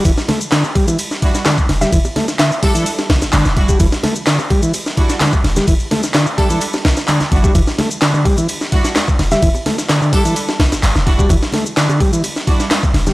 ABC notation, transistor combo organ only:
X:1
M:4/4
L:1/16
Q:1/4=128
K:Em
V:1 name="Transistor combo organ" clef=bass
E, z A, z D, z G, E, z4 D, z2 G, | E, z A, z D, z G, E, z4 D, z2 G, | E, z A, z D, z G, E, z4 D, z2 G, | E, z A, z D, z G, E, z4 D, z2 G, |
E, z A, z D, D, G, E, z6 z G, | E, z A, z D, D, G, E, z6 z G, | E, z A, z D, D, G, E, z6 z G, |]